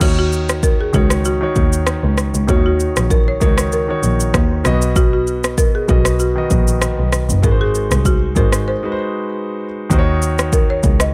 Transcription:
0.00 0.90 D#2 loud
0.00 0.70 D#3 medium
0.00 0.71 D#4 medium
0.00 0.09 F4 medium
0.00 0.18 F#4 medium
0.00 0.72 C#5 medium
0.00 kick loud
0.00 crash medium
0.00 shaker medium
0.08 0.74 F#4 medium
0.19 0.65 F#4 medium
0.33 shaker medium
0.49 cross-stick medium
0.49 shaker medium
0.63 0.79 A#4 loud
0.63 kick medium
0.63 shaker medium
0.81 0.93 G#4 medium
0.93 1.38 C#2 loud
0.93 1.28 D#3 medium
0.93 1.29 D#4 medium
0.93 1.29 F#4 medium
0.93 1.24 F#4 medium
0.93 1.30 C#5 medium
0.93 kick loud
0.93 shaker medium
1.10 cross-stick loud
1.10 shaker medium
1.25 2.14 F#4 medium
1.25 shaker medium
1.41 2.21 D#3 medium
1.41 2.21 D#4 medium
1.41 2.21 F#4 medium
1.41 2.22 C#5 medium
1.56 1.90 D#2 medium
1.56 kick medium
1.56 shaker medium
1.73 shaker medium
1.87 cross-stick loud
1.87 shaker medium
2.04 2.26 C#2 medium
2.18 cross-stick medium
2.18 shaker medium
2.34 2.45 C#2 medium
2.34 shaker medium
2.47 2.83 D#2 loud
2.47 3.18 D#3 medium
2.47 3.18 D#4 medium
2.47 2.65 F#4 medium
2.47 3.19 F#4 medium
2.47 3.19 C#5 medium
2.47 kick loud
2.47 shaker medium
2.66 3.12 F#4 medium
2.80 shaker medium
2.96 3.28 A#1 medium
2.96 cross-stick medium
2.96 shaker medium
3.10 3.28 A#4 loud
3.10 kick medium
3.10 shaker medium
3.28 3.34 C#5 loud
3.40 3.85 C#2 medium
3.40 3.76 D#3 medium
3.40 3.76 D#4 medium
3.40 3.77 F#4 medium
3.40 3.56 A#4 medium
3.40 3.77 C#5 medium
3.40 kick loud
3.40 shaker medium
3.58 cross-stick loud
3.58 shaker medium
3.72 4.61 A#4 medium
3.72 shaker medium
3.88 4.64 D#3 medium
3.88 4.65 D#4 medium
3.88 4.64 F#4 medium
3.88 4.66 C#5 medium
4.03 4.25 A#1 medium
4.03 shaker medium
4.20 shaker medium
4.34 4.56 D#2 medium
4.34 kick medium
4.34 cross-stick loud
4.34 shaker medium
4.64 5.53 B1 medium
4.64 5.64 B2 medium
4.64 5.65 B3 medium
4.64 5.65 F#4 medium
4.64 5.65 D#5 loud
4.64 cross-stick medium
4.64 shaker medium
4.82 shaker medium
4.96 5.12 F#4 loud
4.96 kick loud
4.96 shaker medium
5.13 5.55 F#4 medium
5.27 shaker medium
5.44 cross-stick medium
5.44 shaker medium
5.58 5.74 A#4 loud
5.58 kick medium
5.58 shaker medium
5.75 5.88 G#4 medium
5.88 6.33 B1 loud
5.88 6.23 B2 medium
5.88 6.24 B3 medium
5.88 6.18 F#4 medium
5.88 6.24 F#4 medium
5.88 6.24 D#5 medium
5.88 kick loud
5.88 shaker medium
6.05 cross-stick loud
6.05 shaker medium
6.20 7.09 F#4 medium
6.20 shaker medium
6.36 7.16 D#3 medium
6.36 7.16 B3 medium
6.36 7.16 F#4 medium
6.36 7.17 D#5 medium
6.50 6.85 A#1 medium
6.50 kick medium
6.50 shaker medium
6.68 shaker medium
6.82 cross-stick loud
6.82 shaker medium
6.99 7.21 B1 medium
7.13 cross-stick medium
7.13 shaker medium
7.29 7.39 F#1 medium
7.29 shaker medium
7.42 7.91 G#1 loud
7.42 8.13 G#3 medium
7.42 8.13 D#4 medium
7.42 8.14 F#4 medium
7.42 7.61 A#4 loud
7.42 7.51 B4 medium
7.42 kick loud
7.42 shaker medium
7.51 8.17 C5 medium
7.61 8.02 G#4 medium
7.75 shaker medium
7.91 8.36 C2 medium
7.91 cross-stick medium
7.91 shaker medium
8.05 8.38 F#4 medium
8.05 kick medium
8.05 shaker medium
8.35 8.58 G#1 medium
8.35 8.71 G#3 medium
8.35 8.71 D#4 medium
8.35 8.71 F#4 medium
8.35 8.65 A#4 loud
8.35 8.72 C5 medium
8.35 kick loud
8.35 shaker medium
8.52 cross-stick medium
8.52 shaker medium
8.68 9.56 C5 loud
8.83 9.63 G#3 medium
8.83 9.63 D#4 medium
8.83 9.64 F#4 medium
8.83 8.91 B4 medium
8.92 9.67 C5 medium
9.90 10.80 D#2 loud
9.90 10.82 D#3 medium
9.90 10.83 D#4 medium
9.90 10.83 F#4 medium
9.90 9.99 C5 medium
9.90 kick loud
9.90 shaker medium
9.99 10.87 C#5 loud
10.22 shaker medium
10.39 cross-stick medium
10.39 shaker medium
10.53 10.69 A#4 medium
10.53 kick medium
10.53 shaker medium
10.70 10.99 C#5 medium
10.83 11.14 C#2 medium
10.83 kick loud
10.83 shaker medium
11.00 11.14 D#5 loud
11.00 cross-stick loud
11.00 shaker medium

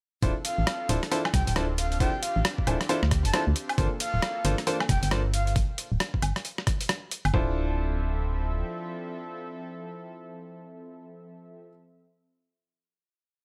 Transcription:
0.23 0.32 D1 loud
0.23 5.52 C4 medium
0.23 0.31 D4 medium
0.23 3.75 D4 medium
0.23 0.31 E4 medium
0.23 0.31 F4 medium
0.23 5.52 F4 medium
0.23 0.31 A4 medium
0.23 1.99 A4 medium
0.23 0.31 C5 medium
0.23 kick loud
0.23 closed hi-hat medium
0.45 0.89 F5 loud
0.45 closed hi-hat loud
0.58 0.65 A1 medium
0.67 cross-stick loud
0.67 closed hi-hat medium
0.89 0.99 D1 loud
0.89 0.98 D4 medium
0.89 0.98 E4 medium
0.89 0.98 F4 medium
0.89 0.98 A4 medium
0.89 0.98 C5 medium
0.89 closed hi-hat loud
1.03 cross-stick medium
1.03 closed hi-hat soft
1.12 1.20 D4 loud
1.12 1.20 E4 medium
1.12 1.20 F4 medium
1.12 1.20 A4 medium
1.12 1.20 C5 loud
1.12 closed hi-hat medium
1.25 cross-stick medium
1.25 high woodblock medium
1.34 1.44 C2 loud
1.34 1.42 G5 medium
1.34 kick loud
1.34 cross-stick medium
1.34 closed hi-hat loud
1.47 2.08 D1 medium
1.47 1.53 G5 medium
1.47 closed hi-hat medium
1.56 1.64 D4 medium
1.56 1.64 E4 medium
1.56 1.64 F4 medium
1.56 1.64 A4 medium
1.56 1.64 C5 medium
1.56 cross-stick loud
1.56 closed hi-hat medium
1.78 1.87 F5 medium
1.78 closed hi-hat loud
1.92 1.97 F5 medium
1.92 closed hi-hat soft
2.00 2.09 D4 medium
2.00 2.09 E4 medium
2.00 2.09 F4 medium
2.00 3.76 G4 medium
2.00 2.09 A4 medium
2.00 2.09 C5 medium
2.00 2.21 G5 medium
2.00 kick loud
2.00 closed hi-hat medium
2.23 2.39 F5 medium
2.23 closed hi-hat loud
2.36 2.42 A1 medium
2.45 cross-stick loud
2.45 closed hi-hat medium
2.58 kick medium
2.67 2.77 D1 loud
2.67 2.75 D4 medium
2.67 2.75 E4 medium
2.67 2.75 F4 medium
2.67 2.75 A4 medium
2.67 2.75 C5 medium
2.67 closed hi-hat loud
2.67 high woodblock medium
2.81 cross-stick medium
2.81 closed hi-hat soft
2.89 2.98 D4 loud
2.89 2.98 E4 medium
2.89 2.98 F4 medium
2.89 2.98 A4 medium
2.89 2.98 C5 loud
2.89 closed hi-hat medium
3.03 3.27 D2 medium
3.03 cross-stick medium
3.11 kick loud
3.11 cross-stick medium
3.11 closed hi-hat loud
3.25 3.31 F1 loud
3.25 3.30 A5 medium
3.25 closed hi-hat medium
3.34 3.42 D4 medium
3.34 3.42 E4 medium
3.34 3.42 F4 medium
3.34 3.42 A4 medium
3.34 3.42 C5 medium
3.34 3.42 A5 medium
3.34 cross-stick loud
3.34 closed hi-hat medium
3.47 3.54 D2 medium
3.56 closed hi-hat medium
3.69 closed hi-hat soft
3.69 high woodblock medium
3.78 3.88 G1 loud
3.78 5.54 A#3 medium
3.78 3.86 A#3 medium
3.78 3.86 D4 medium
3.78 3.86 F4 medium
3.78 3.86 A4 medium
3.78 5.54 A4 medium
3.78 3.86 C5 medium
3.78 kick loud
3.78 closed hi-hat medium
4.00 4.45 F5 loud
4.00 closed hi-hat loud
4.14 4.20 D1 medium
4.22 cross-stick loud
4.22 closed hi-hat medium
4.45 4.55 G1 loud
4.45 4.53 A#3 medium
4.45 4.53 D4 medium
4.45 4.53 F4 medium
4.45 4.53 A4 medium
4.45 4.53 C5 medium
4.45 closed hi-hat medium
4.58 cross-stick medium
4.58 closed hi-hat soft
4.67 4.75 A#3 loud
4.67 4.75 D4 medium
4.67 4.75 F4 medium
4.67 4.75 A4 medium
4.67 4.75 C5 loud
4.67 closed hi-hat medium
4.80 cross-stick medium
4.80 high woodblock medium
4.89 4.99 F1 loud
4.89 4.98 G5 medium
4.89 kick loud
4.89 cross-stick medium
4.89 closed hi-hat loud
5.03 5.63 G1 loud
5.03 5.08 G5 medium
5.03 closed hi-hat medium
5.11 5.20 A#3 medium
5.11 5.20 D4 medium
5.11 5.20 F4 medium
5.11 5.20 A4 medium
5.11 5.20 C5 medium
5.11 cross-stick loud
5.11 closed hi-hat medium
5.34 5.42 F5 medium
5.34 closed hi-hat medium
5.47 5.53 F5 medium
5.47 closed hi-hat soft
5.56 kick loud
5.56 closed hi-hat medium
5.78 closed hi-hat loud
5.92 5.98 D1 medium
6.00 cross-stick loud
6.00 closed hi-hat medium
6.14 kick medium
6.22 6.32 G1 medium
6.22 closed hi-hat medium
6.22 high woodblock medium
6.36 cross-stick medium
6.36 closed hi-hat soft
6.45 closed hi-hat medium
6.58 cross-stick medium
6.67 kick loud
6.67 cross-stick medium
6.67 closed hi-hat loud
6.81 closed hi-hat medium
6.89 cross-stick loud
6.89 closed hi-hat medium
7.11 closed hi-hat medium
7.25 7.31 G1 medium
7.25 closed hi-hat soft
7.25 high woodblock medium
7.34 8.63 D1 medium
7.34 11.65 F3 medium
7.34 11.65 C4 medium
7.34 11.69 D4 medium
7.34 11.69 E4 medium
7.34 11.69 F4 medium
7.34 11.69 A4 medium
7.34 11.65 A4 medium
7.34 11.69 C5 loud
7.34 11.65 E5 medium
7.34 kick loud

